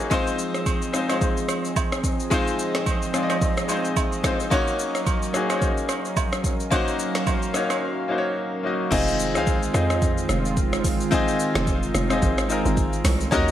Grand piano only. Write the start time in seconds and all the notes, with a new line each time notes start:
Already playing: A#3 C#4 D#4 F#4 G#4 C5 C#5 D#5
0.10 G#3 C4 D#4 F4 C5
0.92 G#3 C4 D#4 F4 C5
1.08 G#3 C4 D#4 F4 C5
2.30 G#3 C4 D#4 F4 C5
3.13 G#3 C4 D#4 F4 D5
3.23 D#5
3.68 G#3 C4 D#4 F4 C5
4.23 G#3 C4 D#4 F4 C5
4.50 A#3 C#4 D#4 F#4 C#5
5.33 A#3 C#4 D#4 F#4 G#4
5.49 A#3 C#4 D#4 F#4 C5
5.59 C#5
6.70 A#3 C#4 D#4 F#4 C5
7.53 A#3 C#4 D#4 F#4 C#5
8.08 A#3 C#4 D#4 F#4 C5
8.18 C#5
8.63 A#3 C#4 D#4 F#4 D#5
8.91 C4 D#4 F4 G#4 D#5
9.34 C4 D#4 F4 G#4 F5
9.73 C4 D#4 F4 G#4 D#5
11.11 C4 D#4 F4 G#4 D#5
12.09 C4 D#4 F4 G#4 D#5
12.48 C4 D#4 F4 G#4 A#4
13.31 C#4 D#4 F#4 A#4 D#5